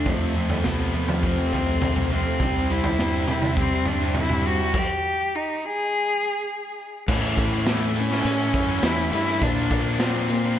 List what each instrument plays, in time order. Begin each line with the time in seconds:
Already playing: cello D4
0.05 steel-string acoustic guitar F2 C3 F3 A3 C4, fingered electric bass F2, distorted electric guitar F2 C3 F3, cello A3, kick, floor tom
0.35 distorted electric guitar F2 C3 F3, steel-string acoustic guitar C3 F3 A3 C4
0.49 steel-string acoustic guitar F3 A3 C4, floor tom
0.64 fingered electric bass C2, steel-string acoustic guitar F2 C3 F3 A3, distorted electric guitar F2 C3 F3, cello B3, snare
0.93 distorted electric guitar F2 C3 F3, steel-string acoustic guitar C3 F3 A3 C4
1.08 fingered electric bass F3, steel-string acoustic guitar F3 A3 C4, floor tom
1.23 steel-string acoustic guitar F2 C3 F3 A3 C4, distorted electric guitar F2 C3 F3, cello C4, kick
1.38 steel-string acoustic guitar F3 A3 C4
1.52 fingered electric bass C2, distorted electric guitar F2 C3 F3, steel-string acoustic guitar C3 F3 A3 C4, floor tom
1.67 steel-string acoustic guitar F3 A3 C4
1.82 distorted electric guitar F2 C3 F3, floor tom, mid tom
1.96 fingered electric bass C2, mid tom
2.10 distorted electric guitar F2 C3 F3, steel-string acoustic guitar C3 F3 A3 C4, cello C4
2.25 steel-string acoustic guitar F3 A3 C4
2.39 fingered electric bass C2, steel-string acoustic guitar C3 G3 C4 E4, distorted electric guitar C3 G3 C4, kick, floor tom
2.69 steel-string acoustic guitar C3 G3 C4 E4, distorted electric guitar C3 G3 C4, cello E4
2.84 steel-string acoustic guitar G3 C4 E4, floor tom
2.98 fingered electric bass G2, steel-string acoustic guitar C3 G3 C4 E4, distorted electric guitar C3 G3 C4, snare
3.28 steel-string acoustic guitar C3 G3 C4 E4, distorted electric guitar C3 G3 C4, cello E4, mid tom
3.42 fingered electric bass C3, steel-string acoustic guitar G3 C4 E4, floor tom
3.57 distorted electric guitar C3 G3 C4, steel-string acoustic guitar C3 G3 C4, cello C4, kick
3.61 steel-string acoustic guitar E4
3.72 steel-string acoustic guitar G3 C4 E4
3.86 fingered electric bass G2, steel-string acoustic guitar C3 G3 C4 E4, distorted electric guitar C3 G3 C4, cello D4, floor tom
4.01 steel-string acoustic guitar G3 C4 E4
4.14 distorted electric guitar C3 G3 C4, cello E4, floor tom, mid tom
4.29 fingered electric bass G2, mid tom
4.45 steel-string acoustic guitar C3 G3 C4 E4, distorted electric guitar C3 G3 C4, cello F#4
4.60 steel-string acoustic guitar G3 C4 E4
4.74 cello G4, kick, crash
5.35 cello D#4
5.65 cello G#4
7.08 distorted electric guitar A2 E3 A3 C#4 E4, fingered electric bass A2, kick, crash
7.23 closed hi-hat
7.37 distorted electric guitar E3 A3 C#4 E4, kick, closed hi-hat
7.66 distorted electric guitar A2 E3 A3 C#4 E4, snare, closed hi-hat
7.81 closed hi-hat
7.96 cello C#4, muted distorted electric guitar stroke, closed hi-hat
8.10 distorted electric guitar A3 C#4 E4, snare
8.25 fingered electric bass A2, closed hi-hat
8.39 distorted electric guitar A3 C#4 E4, closed hi-hat
8.53 fingered electric bass F#2, distorted electric guitar E3 A3 C#4 E4, kick, closed hi-hat
8.67 distorted electric guitar A3 C#4 E4
8.82 fingered electric bass E2, distorted electric guitar A2 E3 A3 C#4 E4, cello E4, snare, closed hi-hat
8.97 distorted electric guitar A3 C#4 E4, closed hi-hat
9.11 fingered electric bass G2, distorted electric guitar E3 A3 C#4 E4, cello E4, closed hi-hat
9.26 distorted electric guitar A3 C#4 E4
9.40 distorted electric guitar A#2 F3 A#3 D4 F4, fingered electric bass A#2, cello D4, kick, closed hi-hat
9.70 distorted electric guitar F3 A#3 D4 F4, kick, closed hi-hat
9.98 distorted electric guitar A#2 F3 A#3 D4 F4, cello C4, snare, closed hi-hat
10.14 closed hi-hat
10.29 muted distorted electric guitar stroke, closed hi-hat
10.43 distorted electric guitar A#3 D4 F4